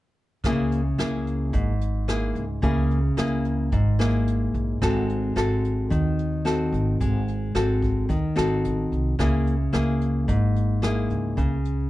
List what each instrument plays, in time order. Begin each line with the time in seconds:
0.44 upright bass C#2, nylon-string guitar C#3 A#3 E4 G#4, kick, cross-stick, closed hi-hat
0.72 closed hi-hat
0.98 upright bass C#2, nylon-string guitar A#3 E4 G#4, cross-stick, closed hi-hat
1.27 closed hi-hat
1.53 upright bass G#1, nylon-string guitar G#2, kick, closed hi-hat
1.81 closed hi-hat
2.08 nylon-string guitar A#3 E4 G#4, cross-stick, closed hi-hat
2.35 upright bass C#2, closed hi-hat
2.62 upright bass C#2, nylon-string guitar C#3 A#3 E4 G#4, kick, closed hi-hat
2.90 closed hi-hat
3.17 upright bass C#2, nylon-string guitar A#3 E4 G#4, cross-stick, closed hi-hat
3.45 closed hi-hat
3.72 upright bass G#1, nylon-string guitar G#2, kick, closed hi-hat
3.99 nylon-string guitar A#3 E4 G#4, cross-stick, closed hi-hat
4.27 closed hi-hat
4.54 upright bass A#1, closed hi-hat
4.82 upright bass G#1, nylon-string guitar G#3 C4 F#4 A4, kick, cross-stick, closed hi-hat
5.09 closed hi-hat
5.36 upright bass G#1, nylon-string guitar C4 F#4 A4, cross-stick, closed hi-hat
5.65 closed hi-hat
5.90 upright bass D#2, nylon-string guitar D#3, kick, closed hi-hat
6.19 closed hi-hat
6.45 nylon-string guitar C4 F#4 A4, cross-stick, closed hi-hat
6.72 upright bass G#1, closed hi-hat
7.01 upright bass G#1, nylon-string guitar G#3, kick, closed hi-hat
7.28 closed hi-hat
7.55 upright bass G#1, nylon-string guitar C4 F#4 A4, cross-stick, closed hi-hat
7.82 kick, closed hi-hat
8.09 upright bass D#2, nylon-string guitar D#3, kick, closed hi-hat
8.36 upright bass G#1, nylon-string guitar C4 F#4 A4, cross-stick
8.64 upright bass A1, closed hi-hat
8.92 upright bass C2, closed hi-hat
9.19 upright bass C#2, nylon-string guitar C#3 A#3 E4 G#4, kick, cross-stick, closed hi-hat
9.47 closed hi-hat
9.73 upright bass C#2, nylon-string guitar A#3 E4 G#4, cross-stick, closed hi-hat
10.01 closed hi-hat
10.28 upright bass G#1, nylon-string guitar G#2, kick, closed hi-hat
10.56 closed hi-hat
10.82 nylon-string guitar A#3 E4 G#4, cross-stick, closed hi-hat
11.10 upright bass C#2, closed hi-hat
11.37 upright bass C#2, nylon-string guitar C#3, kick, closed hi-hat
11.65 closed hi-hat